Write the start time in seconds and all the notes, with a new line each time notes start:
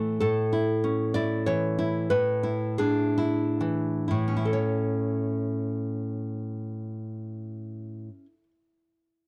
Already playing: A2 E3 A3
0.20 A2 A4
0.53 E4
0.84 C#4
1.14 E4 D5
1.46 E3 C#5
1.79 E4
2.10 A2 B4
2.43 E4
2.78 D4 G#4
3.18 E4
3.61 E3
4.08 A2 E4
4.28 C#4
4.37 E4
4.45 A4
4.53 C#5